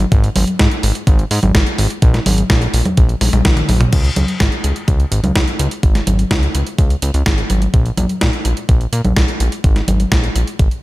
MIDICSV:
0, 0, Header, 1, 3, 480
1, 0, Start_track
1, 0, Tempo, 476190
1, 119, Time_signature, 4, 2, 24, 8
1, 10916, End_track
2, 0, Start_track
2, 0, Title_t, "Analog synth bass"
2, 0, Program_c, 0, 38
2, 119, Note_on_c, 0, 32, 106
2, 296, Note_off_c, 0, 32, 0
2, 360, Note_on_c, 0, 32, 88
2, 448, Note_off_c, 0, 32, 0
2, 599, Note_on_c, 0, 44, 85
2, 688, Note_off_c, 0, 44, 0
2, 840, Note_on_c, 0, 32, 81
2, 928, Note_off_c, 0, 32, 0
2, 1080, Note_on_c, 0, 32, 95
2, 1257, Note_off_c, 0, 32, 0
2, 1319, Note_on_c, 0, 44, 102
2, 1408, Note_off_c, 0, 44, 0
2, 1439, Note_on_c, 0, 32, 81
2, 1528, Note_off_c, 0, 32, 0
2, 1559, Note_on_c, 0, 32, 92
2, 1648, Note_off_c, 0, 32, 0
2, 1799, Note_on_c, 0, 32, 108
2, 1887, Note_off_c, 0, 32, 0
2, 2039, Note_on_c, 0, 34, 103
2, 2217, Note_off_c, 0, 34, 0
2, 2279, Note_on_c, 0, 32, 85
2, 2456, Note_off_c, 0, 32, 0
2, 2519, Note_on_c, 0, 34, 95
2, 2696, Note_off_c, 0, 34, 0
2, 2758, Note_on_c, 0, 34, 85
2, 2847, Note_off_c, 0, 34, 0
2, 2999, Note_on_c, 0, 34, 85
2, 3176, Note_off_c, 0, 34, 0
2, 3238, Note_on_c, 0, 34, 84
2, 3327, Note_off_c, 0, 34, 0
2, 3357, Note_on_c, 0, 34, 98
2, 3447, Note_off_c, 0, 34, 0
2, 3479, Note_on_c, 0, 34, 85
2, 3656, Note_off_c, 0, 34, 0
2, 3718, Note_on_c, 0, 34, 86
2, 3896, Note_off_c, 0, 34, 0
2, 3959, Note_on_c, 0, 37, 99
2, 4136, Note_off_c, 0, 37, 0
2, 4198, Note_on_c, 0, 37, 84
2, 4287, Note_off_c, 0, 37, 0
2, 4439, Note_on_c, 0, 32, 85
2, 4528, Note_off_c, 0, 32, 0
2, 4676, Note_on_c, 0, 37, 79
2, 4766, Note_off_c, 0, 37, 0
2, 4918, Note_on_c, 0, 37, 90
2, 5096, Note_off_c, 0, 37, 0
2, 5156, Note_on_c, 0, 32, 99
2, 5246, Note_off_c, 0, 32, 0
2, 5276, Note_on_c, 0, 37, 76
2, 5366, Note_off_c, 0, 37, 0
2, 5399, Note_on_c, 0, 37, 90
2, 5487, Note_off_c, 0, 37, 0
2, 5638, Note_on_c, 0, 37, 104
2, 5727, Note_off_c, 0, 37, 0
2, 5879, Note_on_c, 0, 32, 100
2, 6056, Note_off_c, 0, 32, 0
2, 6118, Note_on_c, 0, 32, 85
2, 6296, Note_off_c, 0, 32, 0
2, 6359, Note_on_c, 0, 37, 93
2, 6536, Note_off_c, 0, 37, 0
2, 6600, Note_on_c, 0, 37, 87
2, 6688, Note_off_c, 0, 37, 0
2, 6839, Note_on_c, 0, 37, 79
2, 7016, Note_off_c, 0, 37, 0
2, 7079, Note_on_c, 0, 37, 85
2, 7168, Note_off_c, 0, 37, 0
2, 7199, Note_on_c, 0, 37, 101
2, 7287, Note_off_c, 0, 37, 0
2, 7320, Note_on_c, 0, 32, 85
2, 7497, Note_off_c, 0, 32, 0
2, 7559, Note_on_c, 0, 32, 93
2, 7737, Note_off_c, 0, 32, 0
2, 7800, Note_on_c, 0, 34, 99
2, 7977, Note_off_c, 0, 34, 0
2, 8039, Note_on_c, 0, 34, 88
2, 8128, Note_off_c, 0, 34, 0
2, 8279, Note_on_c, 0, 46, 83
2, 8368, Note_off_c, 0, 46, 0
2, 8519, Note_on_c, 0, 34, 80
2, 8607, Note_off_c, 0, 34, 0
2, 8759, Note_on_c, 0, 34, 90
2, 8936, Note_off_c, 0, 34, 0
2, 8997, Note_on_c, 0, 46, 103
2, 9087, Note_off_c, 0, 46, 0
2, 9117, Note_on_c, 0, 34, 80
2, 9207, Note_off_c, 0, 34, 0
2, 9239, Note_on_c, 0, 34, 90
2, 9328, Note_off_c, 0, 34, 0
2, 9477, Note_on_c, 0, 34, 105
2, 9567, Note_off_c, 0, 34, 0
2, 9719, Note_on_c, 0, 32, 102
2, 9896, Note_off_c, 0, 32, 0
2, 9957, Note_on_c, 0, 32, 83
2, 10135, Note_off_c, 0, 32, 0
2, 10199, Note_on_c, 0, 34, 91
2, 10376, Note_off_c, 0, 34, 0
2, 10437, Note_on_c, 0, 34, 87
2, 10527, Note_off_c, 0, 34, 0
2, 10679, Note_on_c, 0, 32, 101
2, 10768, Note_off_c, 0, 32, 0
2, 10916, End_track
3, 0, Start_track
3, 0, Title_t, "Drums"
3, 119, Note_on_c, 9, 36, 119
3, 119, Note_on_c, 9, 42, 66
3, 220, Note_off_c, 9, 36, 0
3, 220, Note_off_c, 9, 42, 0
3, 239, Note_on_c, 9, 42, 39
3, 340, Note_off_c, 9, 42, 0
3, 359, Note_on_c, 9, 46, 115
3, 359, Note_on_c, 9, 63, 87
3, 460, Note_off_c, 9, 46, 0
3, 460, Note_off_c, 9, 63, 0
3, 479, Note_on_c, 9, 42, 39
3, 580, Note_off_c, 9, 42, 0
3, 599, Note_on_c, 9, 38, 107
3, 599, Note_on_c, 9, 42, 62
3, 600, Note_on_c, 9, 36, 113
3, 700, Note_off_c, 9, 36, 0
3, 700, Note_off_c, 9, 38, 0
3, 700, Note_off_c, 9, 42, 0
3, 720, Note_on_c, 9, 42, 39
3, 821, Note_off_c, 9, 42, 0
3, 839, Note_on_c, 9, 46, 97
3, 940, Note_off_c, 9, 46, 0
3, 960, Note_on_c, 9, 42, 40
3, 1060, Note_off_c, 9, 42, 0
3, 1079, Note_on_c, 9, 36, 122
3, 1080, Note_on_c, 9, 42, 68
3, 1180, Note_off_c, 9, 36, 0
3, 1180, Note_off_c, 9, 42, 0
3, 1200, Note_on_c, 9, 42, 39
3, 1301, Note_off_c, 9, 42, 0
3, 1319, Note_on_c, 9, 46, 107
3, 1420, Note_off_c, 9, 46, 0
3, 1439, Note_on_c, 9, 42, 39
3, 1439, Note_on_c, 9, 63, 82
3, 1540, Note_off_c, 9, 42, 0
3, 1540, Note_off_c, 9, 63, 0
3, 1559, Note_on_c, 9, 38, 119
3, 1559, Note_on_c, 9, 42, 68
3, 1560, Note_on_c, 9, 36, 118
3, 1660, Note_off_c, 9, 36, 0
3, 1660, Note_off_c, 9, 38, 0
3, 1660, Note_off_c, 9, 42, 0
3, 1679, Note_on_c, 9, 42, 39
3, 1780, Note_off_c, 9, 42, 0
3, 1798, Note_on_c, 9, 46, 91
3, 1899, Note_off_c, 9, 46, 0
3, 1919, Note_on_c, 9, 42, 39
3, 2020, Note_off_c, 9, 42, 0
3, 2038, Note_on_c, 9, 42, 70
3, 2040, Note_on_c, 9, 36, 121
3, 2139, Note_off_c, 9, 42, 0
3, 2140, Note_off_c, 9, 36, 0
3, 2158, Note_on_c, 9, 38, 36
3, 2158, Note_on_c, 9, 42, 39
3, 2259, Note_off_c, 9, 38, 0
3, 2259, Note_off_c, 9, 42, 0
3, 2278, Note_on_c, 9, 46, 119
3, 2278, Note_on_c, 9, 63, 88
3, 2379, Note_off_c, 9, 46, 0
3, 2379, Note_off_c, 9, 63, 0
3, 2398, Note_on_c, 9, 42, 40
3, 2499, Note_off_c, 9, 42, 0
3, 2518, Note_on_c, 9, 38, 113
3, 2518, Note_on_c, 9, 42, 67
3, 2519, Note_on_c, 9, 36, 112
3, 2619, Note_off_c, 9, 38, 0
3, 2619, Note_off_c, 9, 42, 0
3, 2620, Note_off_c, 9, 36, 0
3, 2637, Note_on_c, 9, 42, 41
3, 2738, Note_off_c, 9, 42, 0
3, 2758, Note_on_c, 9, 46, 99
3, 2858, Note_off_c, 9, 46, 0
3, 2878, Note_on_c, 9, 42, 41
3, 2878, Note_on_c, 9, 63, 65
3, 2978, Note_off_c, 9, 42, 0
3, 2978, Note_off_c, 9, 63, 0
3, 2997, Note_on_c, 9, 42, 68
3, 2999, Note_on_c, 9, 36, 120
3, 3098, Note_off_c, 9, 42, 0
3, 3100, Note_off_c, 9, 36, 0
3, 3117, Note_on_c, 9, 42, 41
3, 3218, Note_off_c, 9, 42, 0
3, 3237, Note_on_c, 9, 46, 110
3, 3237, Note_on_c, 9, 48, 62
3, 3338, Note_off_c, 9, 46, 0
3, 3338, Note_off_c, 9, 48, 0
3, 3358, Note_on_c, 9, 42, 40
3, 3358, Note_on_c, 9, 48, 60
3, 3459, Note_off_c, 9, 42, 0
3, 3459, Note_off_c, 9, 48, 0
3, 3477, Note_on_c, 9, 38, 118
3, 3477, Note_on_c, 9, 42, 70
3, 3477, Note_on_c, 9, 47, 80
3, 3479, Note_on_c, 9, 36, 117
3, 3578, Note_off_c, 9, 38, 0
3, 3578, Note_off_c, 9, 42, 0
3, 3578, Note_off_c, 9, 47, 0
3, 3580, Note_off_c, 9, 36, 0
3, 3597, Note_on_c, 9, 42, 42
3, 3597, Note_on_c, 9, 47, 70
3, 3698, Note_off_c, 9, 42, 0
3, 3698, Note_off_c, 9, 47, 0
3, 3716, Note_on_c, 9, 46, 98
3, 3716, Note_on_c, 9, 63, 82
3, 3817, Note_off_c, 9, 46, 0
3, 3817, Note_off_c, 9, 63, 0
3, 3836, Note_on_c, 9, 42, 41
3, 3836, Note_on_c, 9, 45, 86
3, 3937, Note_off_c, 9, 42, 0
3, 3937, Note_off_c, 9, 45, 0
3, 3957, Note_on_c, 9, 42, 69
3, 3957, Note_on_c, 9, 49, 91
3, 3959, Note_on_c, 9, 36, 121
3, 4058, Note_off_c, 9, 42, 0
3, 4058, Note_off_c, 9, 49, 0
3, 4060, Note_off_c, 9, 36, 0
3, 4077, Note_on_c, 9, 42, 40
3, 4178, Note_off_c, 9, 42, 0
3, 4197, Note_on_c, 9, 42, 95
3, 4197, Note_on_c, 9, 63, 83
3, 4298, Note_off_c, 9, 42, 0
3, 4298, Note_off_c, 9, 63, 0
3, 4317, Note_on_c, 9, 42, 40
3, 4418, Note_off_c, 9, 42, 0
3, 4437, Note_on_c, 9, 38, 116
3, 4437, Note_on_c, 9, 42, 66
3, 4439, Note_on_c, 9, 36, 113
3, 4538, Note_off_c, 9, 38, 0
3, 4538, Note_off_c, 9, 42, 0
3, 4540, Note_off_c, 9, 36, 0
3, 4557, Note_on_c, 9, 42, 40
3, 4658, Note_off_c, 9, 42, 0
3, 4678, Note_on_c, 9, 42, 93
3, 4778, Note_off_c, 9, 42, 0
3, 4798, Note_on_c, 9, 42, 39
3, 4899, Note_off_c, 9, 42, 0
3, 4918, Note_on_c, 9, 42, 67
3, 4919, Note_on_c, 9, 36, 116
3, 5018, Note_off_c, 9, 42, 0
3, 5020, Note_off_c, 9, 36, 0
3, 5038, Note_on_c, 9, 42, 39
3, 5139, Note_off_c, 9, 42, 0
3, 5158, Note_on_c, 9, 42, 96
3, 5259, Note_off_c, 9, 42, 0
3, 5278, Note_on_c, 9, 42, 39
3, 5278, Note_on_c, 9, 63, 75
3, 5379, Note_off_c, 9, 42, 0
3, 5379, Note_off_c, 9, 63, 0
3, 5398, Note_on_c, 9, 38, 116
3, 5398, Note_on_c, 9, 42, 66
3, 5399, Note_on_c, 9, 36, 116
3, 5499, Note_off_c, 9, 38, 0
3, 5499, Note_off_c, 9, 42, 0
3, 5500, Note_off_c, 9, 36, 0
3, 5520, Note_on_c, 9, 42, 40
3, 5620, Note_off_c, 9, 42, 0
3, 5639, Note_on_c, 9, 42, 91
3, 5740, Note_off_c, 9, 42, 0
3, 5759, Note_on_c, 9, 42, 38
3, 5860, Note_off_c, 9, 42, 0
3, 5879, Note_on_c, 9, 36, 120
3, 5879, Note_on_c, 9, 42, 66
3, 5980, Note_off_c, 9, 36, 0
3, 5980, Note_off_c, 9, 42, 0
3, 6000, Note_on_c, 9, 38, 38
3, 6000, Note_on_c, 9, 42, 40
3, 6100, Note_off_c, 9, 38, 0
3, 6100, Note_off_c, 9, 42, 0
3, 6119, Note_on_c, 9, 42, 98
3, 6119, Note_on_c, 9, 63, 78
3, 6220, Note_off_c, 9, 42, 0
3, 6220, Note_off_c, 9, 63, 0
3, 6239, Note_on_c, 9, 42, 41
3, 6340, Note_off_c, 9, 42, 0
3, 6359, Note_on_c, 9, 36, 116
3, 6359, Note_on_c, 9, 38, 118
3, 6359, Note_on_c, 9, 42, 64
3, 6460, Note_off_c, 9, 36, 0
3, 6460, Note_off_c, 9, 38, 0
3, 6460, Note_off_c, 9, 42, 0
3, 6479, Note_on_c, 9, 42, 40
3, 6580, Note_off_c, 9, 42, 0
3, 6599, Note_on_c, 9, 42, 94
3, 6700, Note_off_c, 9, 42, 0
3, 6719, Note_on_c, 9, 42, 42
3, 6820, Note_off_c, 9, 42, 0
3, 6839, Note_on_c, 9, 42, 69
3, 6840, Note_on_c, 9, 36, 126
3, 6939, Note_off_c, 9, 42, 0
3, 6940, Note_off_c, 9, 36, 0
3, 6959, Note_on_c, 9, 42, 41
3, 7060, Note_off_c, 9, 42, 0
3, 7079, Note_on_c, 9, 42, 90
3, 7179, Note_off_c, 9, 42, 0
3, 7199, Note_on_c, 9, 42, 41
3, 7299, Note_off_c, 9, 42, 0
3, 7319, Note_on_c, 9, 38, 119
3, 7319, Note_on_c, 9, 42, 69
3, 7320, Note_on_c, 9, 36, 116
3, 7420, Note_off_c, 9, 38, 0
3, 7420, Note_off_c, 9, 42, 0
3, 7421, Note_off_c, 9, 36, 0
3, 7439, Note_on_c, 9, 42, 40
3, 7540, Note_off_c, 9, 42, 0
3, 7558, Note_on_c, 9, 42, 93
3, 7558, Note_on_c, 9, 63, 72
3, 7659, Note_off_c, 9, 42, 0
3, 7659, Note_off_c, 9, 63, 0
3, 7679, Note_on_c, 9, 42, 40
3, 7780, Note_off_c, 9, 42, 0
3, 7799, Note_on_c, 9, 42, 67
3, 7800, Note_on_c, 9, 36, 124
3, 7899, Note_off_c, 9, 42, 0
3, 7900, Note_off_c, 9, 36, 0
3, 7919, Note_on_c, 9, 42, 41
3, 8020, Note_off_c, 9, 42, 0
3, 8038, Note_on_c, 9, 42, 98
3, 8038, Note_on_c, 9, 63, 76
3, 8139, Note_off_c, 9, 42, 0
3, 8139, Note_off_c, 9, 63, 0
3, 8159, Note_on_c, 9, 42, 39
3, 8259, Note_off_c, 9, 42, 0
3, 8279, Note_on_c, 9, 36, 114
3, 8279, Note_on_c, 9, 38, 119
3, 8279, Note_on_c, 9, 42, 67
3, 8380, Note_off_c, 9, 36, 0
3, 8380, Note_off_c, 9, 38, 0
3, 8380, Note_off_c, 9, 42, 0
3, 8398, Note_on_c, 9, 42, 39
3, 8499, Note_off_c, 9, 42, 0
3, 8518, Note_on_c, 9, 42, 88
3, 8618, Note_off_c, 9, 42, 0
3, 8638, Note_on_c, 9, 42, 41
3, 8739, Note_off_c, 9, 42, 0
3, 8758, Note_on_c, 9, 42, 67
3, 8759, Note_on_c, 9, 36, 121
3, 8859, Note_off_c, 9, 42, 0
3, 8860, Note_off_c, 9, 36, 0
3, 8878, Note_on_c, 9, 42, 39
3, 8979, Note_off_c, 9, 42, 0
3, 8998, Note_on_c, 9, 42, 91
3, 9099, Note_off_c, 9, 42, 0
3, 9118, Note_on_c, 9, 42, 39
3, 9118, Note_on_c, 9, 63, 73
3, 9219, Note_off_c, 9, 42, 0
3, 9219, Note_off_c, 9, 63, 0
3, 9238, Note_on_c, 9, 38, 125
3, 9238, Note_on_c, 9, 42, 68
3, 9239, Note_on_c, 9, 36, 125
3, 9339, Note_off_c, 9, 38, 0
3, 9339, Note_off_c, 9, 42, 0
3, 9340, Note_off_c, 9, 36, 0
3, 9358, Note_on_c, 9, 42, 39
3, 9459, Note_off_c, 9, 42, 0
3, 9478, Note_on_c, 9, 42, 86
3, 9579, Note_off_c, 9, 42, 0
3, 9598, Note_on_c, 9, 42, 38
3, 9699, Note_off_c, 9, 42, 0
3, 9718, Note_on_c, 9, 42, 62
3, 9719, Note_on_c, 9, 36, 124
3, 9819, Note_off_c, 9, 42, 0
3, 9820, Note_off_c, 9, 36, 0
3, 9838, Note_on_c, 9, 38, 37
3, 9838, Note_on_c, 9, 42, 38
3, 9939, Note_off_c, 9, 38, 0
3, 9939, Note_off_c, 9, 42, 0
3, 9958, Note_on_c, 9, 42, 92
3, 9958, Note_on_c, 9, 63, 79
3, 10059, Note_off_c, 9, 42, 0
3, 10059, Note_off_c, 9, 63, 0
3, 10078, Note_on_c, 9, 42, 39
3, 10179, Note_off_c, 9, 42, 0
3, 10198, Note_on_c, 9, 38, 112
3, 10198, Note_on_c, 9, 42, 62
3, 10199, Note_on_c, 9, 36, 118
3, 10299, Note_off_c, 9, 38, 0
3, 10299, Note_off_c, 9, 42, 0
3, 10300, Note_off_c, 9, 36, 0
3, 10318, Note_on_c, 9, 42, 40
3, 10419, Note_off_c, 9, 42, 0
3, 10439, Note_on_c, 9, 42, 87
3, 10539, Note_off_c, 9, 42, 0
3, 10559, Note_on_c, 9, 42, 39
3, 10659, Note_off_c, 9, 42, 0
3, 10679, Note_on_c, 9, 42, 64
3, 10680, Note_on_c, 9, 36, 122
3, 10779, Note_off_c, 9, 42, 0
3, 10780, Note_off_c, 9, 36, 0
3, 10799, Note_on_c, 9, 42, 37
3, 10900, Note_off_c, 9, 42, 0
3, 10916, End_track
0, 0, End_of_file